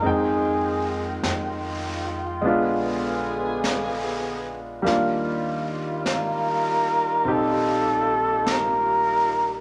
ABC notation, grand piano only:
X:1
M:4/4
L:1/8
Q:"Swing" 1/4=50
K:Ebdor
V:1 name="Grand piano"
[A,CE=g]4 [A,_C=DF]4 | [=G,B,=DF]4 [CE=G]4 |]